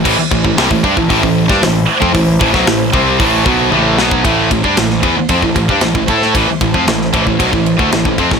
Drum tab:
CC |x---------------|----------------|----------------|----------------|
RD |----------------|----------------|x-x-x-x-x-x-x-x-|x-x-x-x-x-x-x-x-|
HH |----o---o---o---|o---o---o-------|----------------|----------------|
SD |----o------oo---|---oo---------o-|----oo------o--o|----oo------o--o|
T1 |----------------|------------o---|----------------|----------------|
BD |o-oo-ooooo-o---o|o-oo--o-o-o----o|o-oo--o-oooo-oo-|o-oo--oooo-o-ooo|